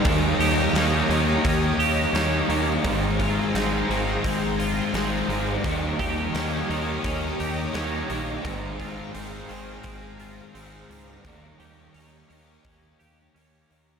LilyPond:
<<
  \new Staff \with { instrumentName = "String machine" } { \time 4/4 \key aes \major \tempo 4 = 86 << { bes''1 | bes''1 | bes''1~ | bes''1~ |
bes''1 | } \\ { <g' des'' ees''>1 | <aes' c'' f''>1 | <g' des'' ees''>1 | <aes' c'' f''>1 |
<g' des'' ees''>1 | } >> }
  \new Staff \with { instrumentName = "Overdriven electric guitar" } { \time 4/4 \key aes \major <ees g bes ees' g' des''>4 <bes ees' g' des''>8 <bes ees' g' des''>4. <bes ees' g' des''>8 <bes ees' g' des''>8 | <aes c' ees' aes' c''>4 <c' ees' aes' c''>8 <ees' aes' c''>4. <c' ees' aes' c''>8 <ees' aes' c''>8 | <ees g bes ees' g' des''>4 <bes ees' g' des''>8 <bes ees' g' des''>4. <bes ees' g' des''>8 <bes ees' g' des''>8 | <aes c' ees' aes' c''>4 <c' ees' aes' c''>8 <ees' aes' c''>4. <c' ees' aes' c''>8 <ees' aes' c''>8 |
<ees g bes ees' g' des''>4 <bes ees' g' des''>8 <bes ees' g' des''>4. <bes ees' g' des''>8 <bes ees' g' des''>8 | }
  \new Staff \with { instrumentName = "Clean electric guitar" } { \time 4/4 \key aes \major ees8 g'8 des'8 ees8 des'8 g'8 des'8 bes8 | ees8 f'8 c'8 ees8 c'8 f'8 c'8 bes8 | ees8 g'8 des'8 ees8 des'8 g'8 des'8 bes8 | ees8 f'8 c'8 ees8 c'8 f'8 c'8 bes8 |
bes8 g'8 des'8 bes8 des'8 g'8 des'8 bes8 | }
  \new Staff \with { instrumentName = "Distorted electric guitar" } { \clef bass \time 4/4 \key aes \major <ees bes ees'>8 <bes ees'>8 <ees bes ees'>8 <bes ees'>4. <ees bes ees'>8 <bes ees'>8 | <aes, ees aes>8 <ees aes>8 <aes, ees aes>8 <ees aes>4. <aes, ees aes>8 <ees aes>8 | <ees bes ees'>8 <bes ees'>8 <ees bes ees'>8 <bes ees'>4. <ees bes ees'>8 <bes ees'>8 | <aes, ees aes>8 <ees aes>8 <aes, ees aes>8 <ees aes>4. <aes, ees aes>8 <ees aes>8 |
<ees bes ees'>8 <bes ees'>8 <ees bes ees'>8 <bes ees'>4. <ees bes ees'>8 <bes ees'>8 | }
  \new Staff \with { instrumentName = "Fingered electric bass" } { \clef bass \time 4/4 \key aes \major ees,8 ees,8 ees,8 ees,8 ees,8 ees,8 ees,8 ees,8 | aes,,4 aes,,8 aes,,8 aes,,4 aes,,8 aes,,8 | ees,8 ees,8 ees,8 ees,8 ees,8 ees,8 ees,8 bes,,8 | aes,,4 aes,,8 aes,,8 aes,,4 aes,,8 des,8 |
ees,8 ees,8 ees,8 ees,8 ees,8 ees,8 ees,8 ees,8 | }
  \new DrumStaff \with { instrumentName = "Drums" } \drummode { \time 4/4 <hho bd>8 hho8 <hho sn>8 hho8 <hho bd>8 hho8 <hho sn>8 hho8 | <hho bd>8 <hho bd>8 <hho sn>8 hho8 <hho bd>8 hho8 <hho sn>8 hho8 | <hho bd>8 <hho bd>8 <hho sn>8 hho8 <hho bd>8 hho8 <hho sn>8 hho8 | <hho bd>8 <hho bd>8 hho8 hho8 <hho bd>8 hho8 hho8 hho8 |
<hho bd>8 hho8 hho8 hho8 <hho bd>8 hho8 hho8 hho8 | }
>>